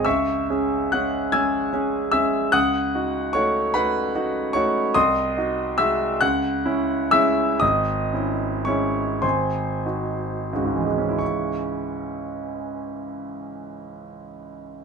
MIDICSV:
0, 0, Header, 1, 2, 480
1, 0, Start_track
1, 0, Key_signature, 4, "minor"
1, 0, Tempo, 864553
1, 30, Time_signature, 6, 3, 24, 8
1, 510, Tempo, 805369
1, 2910, Tempo, 859599
1, 3870, Tempo, 952381
1, 4350, Tempo, 1043478
1, 4830, Tempo, 1181102
1, 5310, Tempo, 1354402
1, 5790, Tempo, 1229508
1, 7214, End_track
2, 0, Start_track
2, 0, Title_t, "Grand piano"
2, 0, Program_c, 0, 0
2, 0, Control_c, 0, 64, 127
2, 25, Note_on_c, 0, 88, 70
2, 31, Note_on_c, 0, 76, 58
2, 31, Note_on_c, 0, 85, 61
2, 33, Note_on_c, 0, 37, 51
2, 38, Control_c, 0, 64, 0
2, 124, Control_c, 0, 64, 127
2, 267, Note_off_c, 0, 37, 0
2, 276, Note_on_c, 0, 61, 33
2, 279, Note_on_c, 0, 68, 40
2, 488, Note_off_c, 0, 76, 0
2, 488, Note_off_c, 0, 85, 0
2, 489, Note_off_c, 0, 61, 0
2, 491, Note_off_c, 0, 68, 0
2, 507, Note_off_c, 0, 88, 0
2, 511, Note_on_c, 0, 90, 67
2, 515, Note_on_c, 0, 78, 54
2, 519, Note_on_c, 0, 56, 37
2, 521, Note_on_c, 0, 61, 40
2, 522, Note_on_c, 0, 68, 40
2, 732, Note_off_c, 0, 56, 0
2, 733, Note_off_c, 0, 61, 0
2, 734, Note_off_c, 0, 68, 0
2, 737, Note_off_c, 0, 78, 0
2, 751, Note_on_c, 0, 92, 74
2, 752, Note_off_c, 0, 90, 0
2, 755, Note_on_c, 0, 80, 57
2, 755, Note_on_c, 0, 88, 55
2, 758, Note_on_c, 0, 56, 40
2, 761, Note_on_c, 0, 61, 40
2, 766, Note_on_c, 0, 68, 42
2, 969, Note_off_c, 0, 56, 0
2, 970, Note_off_c, 0, 61, 0
2, 973, Note_off_c, 0, 68, 0
2, 993, Note_on_c, 0, 61, 43
2, 998, Note_on_c, 0, 68, 40
2, 1210, Note_off_c, 0, 80, 0
2, 1210, Note_off_c, 0, 88, 0
2, 1211, Note_off_c, 0, 61, 0
2, 1213, Note_off_c, 0, 68, 0
2, 1223, Note_on_c, 0, 88, 82
2, 1229, Note_on_c, 0, 56, 43
2, 1229, Note_on_c, 0, 76, 53
2, 1232, Note_off_c, 0, 92, 0
2, 1235, Note_on_c, 0, 61, 40
2, 1235, Note_on_c, 0, 68, 39
2, 1453, Note_off_c, 0, 56, 0
2, 1455, Note_off_c, 0, 61, 0
2, 1455, Note_off_c, 0, 68, 0
2, 1459, Note_off_c, 0, 76, 0
2, 1465, Note_on_c, 0, 90, 88
2, 1469, Note_on_c, 0, 87, 65
2, 1472, Note_on_c, 0, 37, 54
2, 1472, Note_on_c, 0, 78, 71
2, 1473, Note_off_c, 0, 88, 0
2, 1489, Control_c, 0, 64, 0
2, 1577, Control_c, 0, 64, 127
2, 1709, Note_off_c, 0, 37, 0
2, 1718, Note_on_c, 0, 63, 35
2, 1721, Note_on_c, 0, 66, 42
2, 1931, Note_off_c, 0, 87, 0
2, 1932, Note_off_c, 0, 78, 0
2, 1935, Note_off_c, 0, 63, 0
2, 1936, Note_off_c, 0, 66, 0
2, 1947, Note_on_c, 0, 85, 82
2, 1953, Note_off_c, 0, 90, 0
2, 1956, Note_on_c, 0, 73, 56
2, 1959, Note_on_c, 0, 57, 41
2, 1959, Note_on_c, 0, 63, 43
2, 1964, Note_on_c, 0, 66, 45
2, 2174, Note_off_c, 0, 57, 0
2, 2174, Note_off_c, 0, 63, 0
2, 2176, Note_off_c, 0, 66, 0
2, 2179, Note_off_c, 0, 73, 0
2, 2191, Note_on_c, 0, 83, 84
2, 2192, Note_off_c, 0, 85, 0
2, 2196, Note_on_c, 0, 78, 64
2, 2197, Note_on_c, 0, 57, 40
2, 2198, Note_on_c, 0, 71, 61
2, 2202, Note_on_c, 0, 63, 41
2, 2203, Note_on_c, 0, 66, 45
2, 2409, Note_off_c, 0, 57, 0
2, 2412, Note_off_c, 0, 63, 0
2, 2413, Note_off_c, 0, 66, 0
2, 2436, Note_on_c, 0, 63, 47
2, 2439, Note_on_c, 0, 66, 50
2, 2645, Note_off_c, 0, 71, 0
2, 2645, Note_off_c, 0, 78, 0
2, 2647, Note_off_c, 0, 63, 0
2, 2649, Note_off_c, 0, 66, 0
2, 2664, Note_on_c, 0, 85, 80
2, 2666, Note_off_c, 0, 83, 0
2, 2669, Note_on_c, 0, 73, 53
2, 2675, Note_on_c, 0, 57, 45
2, 2675, Note_on_c, 0, 63, 50
2, 2679, Note_on_c, 0, 66, 54
2, 2889, Note_off_c, 0, 57, 0
2, 2889, Note_off_c, 0, 63, 0
2, 2891, Note_off_c, 0, 66, 0
2, 2893, Note_off_c, 0, 73, 0
2, 2907, Note_off_c, 0, 85, 0
2, 2909, Note_on_c, 0, 87, 91
2, 2912, Note_on_c, 0, 84, 71
2, 2914, Note_on_c, 0, 75, 71
2, 2915, Note_on_c, 0, 36, 63
2, 2920, Control_c, 0, 64, 0
2, 3008, Control_c, 0, 64, 127
2, 3138, Note_off_c, 0, 36, 0
2, 3148, Note_on_c, 0, 63, 42
2, 3152, Note_on_c, 0, 66, 42
2, 3359, Note_off_c, 0, 84, 0
2, 3360, Note_off_c, 0, 63, 0
2, 3360, Note_off_c, 0, 75, 0
2, 3362, Note_off_c, 0, 66, 0
2, 3374, Note_on_c, 0, 88, 84
2, 3379, Note_off_c, 0, 87, 0
2, 3379, Note_on_c, 0, 76, 65
2, 3381, Note_on_c, 0, 56, 42
2, 3386, Note_on_c, 0, 63, 39
2, 3387, Note_on_c, 0, 66, 47
2, 3600, Note_off_c, 0, 56, 0
2, 3602, Note_off_c, 0, 63, 0
2, 3603, Note_off_c, 0, 66, 0
2, 3604, Note_off_c, 0, 76, 0
2, 3614, Note_on_c, 0, 90, 83
2, 3619, Note_off_c, 0, 88, 0
2, 3620, Note_on_c, 0, 78, 62
2, 3621, Note_on_c, 0, 37, 56
2, 3632, Control_c, 0, 64, 0
2, 3722, Control_c, 0, 64, 127
2, 3862, Note_off_c, 0, 37, 0
2, 3865, Note_on_c, 0, 64, 55
2, 3866, Note_on_c, 0, 61, 46
2, 4082, Note_off_c, 0, 61, 0
2, 4082, Note_off_c, 0, 64, 0
2, 4083, Note_off_c, 0, 78, 0
2, 4096, Note_on_c, 0, 88, 89
2, 4100, Note_on_c, 0, 76, 69
2, 4101, Note_off_c, 0, 90, 0
2, 4101, Note_on_c, 0, 56, 46
2, 4105, Note_on_c, 0, 61, 44
2, 4107, Note_on_c, 0, 64, 45
2, 4329, Note_off_c, 0, 56, 0
2, 4330, Note_off_c, 0, 61, 0
2, 4331, Note_off_c, 0, 64, 0
2, 4331, Note_off_c, 0, 76, 0
2, 4339, Note_on_c, 0, 87, 80
2, 4346, Note_off_c, 0, 88, 0
2, 4347, Note_on_c, 0, 75, 59
2, 4350, Note_on_c, 0, 32, 61
2, 4359, Control_c, 0, 64, 0
2, 4441, Control_c, 0, 64, 127
2, 4579, Note_off_c, 0, 32, 0
2, 4588, Note_on_c, 0, 61, 33
2, 4592, Note_on_c, 0, 64, 42
2, 4811, Note_off_c, 0, 75, 0
2, 4813, Note_off_c, 0, 61, 0
2, 4815, Note_off_c, 0, 64, 0
2, 4824, Note_on_c, 0, 85, 72
2, 4825, Note_off_c, 0, 87, 0
2, 4832, Note_on_c, 0, 56, 33
2, 4833, Note_on_c, 0, 73, 49
2, 4834, Note_on_c, 0, 61, 40
2, 4835, Note_on_c, 0, 64, 43
2, 5043, Note_off_c, 0, 56, 0
2, 5044, Note_off_c, 0, 61, 0
2, 5044, Note_off_c, 0, 73, 0
2, 5045, Note_off_c, 0, 64, 0
2, 5056, Note_off_c, 0, 85, 0
2, 5057, Note_on_c, 0, 84, 62
2, 5059, Note_on_c, 0, 72, 47
2, 5060, Note_on_c, 0, 80, 43
2, 5062, Note_on_c, 0, 32, 51
2, 5070, Control_c, 0, 64, 0
2, 5161, Control_c, 0, 64, 127
2, 5305, Note_off_c, 0, 32, 0
2, 5315, Note_on_c, 0, 63, 33
2, 5317, Note_on_c, 0, 66, 36
2, 5544, Note_off_c, 0, 63, 0
2, 5545, Note_off_c, 0, 66, 0
2, 5553, Note_on_c, 0, 37, 43
2, 5562, Note_on_c, 0, 56, 32
2, 5563, Note_on_c, 0, 63, 34
2, 5564, Note_on_c, 0, 66, 34
2, 5594, Note_on_c, 0, 44, 38
2, 5634, Note_on_c, 0, 52, 37
2, 5666, Note_off_c, 0, 56, 0
2, 5672, Note_on_c, 0, 56, 36
2, 5713, Note_on_c, 0, 61, 38
2, 5752, Note_on_c, 0, 64, 36
2, 5777, Note_off_c, 0, 72, 0
2, 5777, Note_off_c, 0, 80, 0
2, 5780, Note_off_c, 0, 63, 0
2, 5781, Note_off_c, 0, 66, 0
2, 5786, Note_on_c, 0, 85, 49
2, 5790, Note_off_c, 0, 84, 0
2, 5802, Control_c, 0, 64, 0
2, 5909, Control_c, 0, 64, 127
2, 7214, Note_off_c, 0, 37, 0
2, 7214, Note_off_c, 0, 44, 0
2, 7214, Note_off_c, 0, 52, 0
2, 7214, Note_off_c, 0, 56, 0
2, 7214, Note_off_c, 0, 61, 0
2, 7214, Note_off_c, 0, 64, 0
2, 7214, Note_off_c, 0, 85, 0
2, 7214, End_track
0, 0, End_of_file